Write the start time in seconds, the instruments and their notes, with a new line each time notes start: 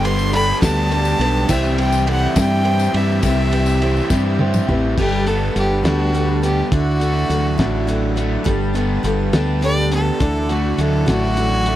Already playing: fingered electric bass G1, overdriven electric guitar G2 D3, steel-string acoustic guitar G3 B3 D4 A4, harmonium A4 G5 B5
0.03 overdriven electric guitar G3 B3 D4 G4, grand piano G4 A4 B4, fiddle C6, ride
0.19 tambourine
0.33 steel-string acoustic guitar G3 B3 D4 A4, grand piano G4 A4 D5, overdriven electric guitar G4, fiddle B5, ride
0.61 fingered electric bass D2, steel-string acoustic guitar G3 B3 D4 A4, overdriven electric guitar G4, fiddle A5, kick, snare, ride, tambourine
0.90 overdriven electric guitar G3 B3 D4 G4, grand piano G4 A4 D5, ride, tambourine
1.05 tambourine
1.19 fingered electric bass B1, overdriven electric guitar G3 G4, steel-string acoustic guitar B3 D4 A4, grand piano G4 A4 B4, ride
1.48 fingered electric bass C2, steel-string acoustic guitar C3 G3 C4 E4 G4, overdriven electric guitar E3, grand piano E4 G4 C5, harmonium G4 E5 G5, fiddle E5, kick, crash, tambourine
1.64 tambourine
1.77 overdriven electric guitar G3 E4 G4, grand piano E4 G4 C5, fiddle G5, ride
1.92 tambourine
2.05 overdriven electric guitar E3, steel-string acoustic guitar G3 C4 E4 G4, grand piano E4 G4 A4, ride
2.09 fiddle F#5
2.36 fingered electric bass G2, steel-string acoustic guitar C3 G3 C4 E4 G4, fiddle G5, kick, snare, ride, tambourine
2.63 overdriven electric guitar E3 G3 E4 G4, grand piano E4 G4 C5, ride
2.80 tambourine
2.94 fingered electric bass G2, overdriven electric guitar G3, steel-string acoustic guitar C4 E4 G4, grand piano E4 G4 B4, fiddle E5, ride
3.22 fingered electric bass C2, steel-string acoustic guitar C3 G3 C4 E4 G4, overdriven electric guitar E3, fiddle E5, kick, ride, tambourine
3.51 overdriven electric guitar G3 E4 G4, grand piano E4 G4 B4, ride, tambourine
3.66 tambourine
3.81 overdriven electric guitar E3, steel-string acoustic guitar G3 C4 E4 G4, grand piano E4 G4 C5, ride
3.97 tambourine
4.10 fingered electric bass G2, steel-string acoustic guitar C3 G3 C4 E4 G4, kick, snare, tambourine
4.39 overdriven electric guitar E3 G3 E4 G4, grand piano E4 G4 C5, high tom
4.54 mid tom, tambourine
4.68 fingered electric bass A1, overdriven electric guitar G3, steel-string acoustic guitar C4 E4 G4, grand piano E4 G4 B4, mid tom
4.97 fingered electric bass G1, steel-string acoustic guitar G3 B3 D4 A4, harmonium G3 B4 A5, fiddle G4, kick, crash
5.26 steel-string acoustic guitar B3 D4 A4, fiddle A4, closed hi-hat
5.55 fingered electric bass G1, steel-string acoustic guitar G3 B3 D4 A4, fiddle G4, closed hi-hat
5.84 fingered electric bass D2, steel-string acoustic guitar G3 B3 D4 A4, fiddle F#4, snare, closed hi-hat
6.13 steel-string acoustic guitar G3 B3 D4 A4, closed hi-hat
6.42 steel-string acoustic guitar B3 D4 A4, fiddle G4, closed hi-hat
6.72 fingered electric bass D2, steel-string acoustic guitar D3 E3 A3 D4 F#4, harmonium E4 D5 F#5, fiddle F#4, kick, closed hi-hat
7.00 steel-string acoustic guitar A3 D4 F#4, closed hi-hat
7.28 fingered electric bass D2, steel-string acoustic guitar E3 A3 D4 F#4, overdriven electric guitar F#3, closed hi-hat
7.57 fingered electric bass A1, steel-string acoustic guitar D3 E3 A3 D4 F#4, kick, snare, closed hi-hat
7.87 steel-string acoustic guitar E3 A3 D4 F#4, overdriven electric guitar F#3, closed hi-hat
8.16 steel-string acoustic guitar A3 D4 F#4, closed hi-hat
8.44 fingered electric bass G1, steel-string acoustic guitar G3 B3 D4 A4, harmonium G4 B4 A5, kick, closed hi-hat
8.73 steel-string acoustic guitar B3 D4 A4, closed hi-hat
9.03 fingered electric bass G1, steel-string acoustic guitar G3 B3 D4 A4, closed hi-hat
9.33 fingered electric bass D2, steel-string acoustic guitar G3 B3 D4 A4, snare, closed hi-hat
9.61 steel-string acoustic guitar G3 B3 D4 A4, fiddle D5, closed hi-hat
9.91 steel-string acoustic guitar B3 D4 A4, fiddle A4, closed hi-hat
10.19 fingered electric bass D2, steel-string acoustic guitar D3 E3 A3 D4 F#4, harmonium E4 D5 F#5, kick, closed hi-hat
10.49 steel-string acoustic guitar A3 D4 F#4, fiddle F#4, closed hi-hat
10.78 fingered electric bass D2, steel-string acoustic guitar E3 A3 D4 F#4, overdriven electric guitar F#3, fiddle A4, closed hi-hat
11.06 fingered electric bass A1, steel-string acoustic guitar D3 E3 A3 D4 F#4, kick, snare, closed hi-hat
11.10 fiddle F#4
11.36 steel-string acoustic guitar E3 A3 D4 F#4, overdriven electric guitar F#3, closed hi-hat
11.65 steel-string acoustic guitar A3 D4 F#4, closed hi-hat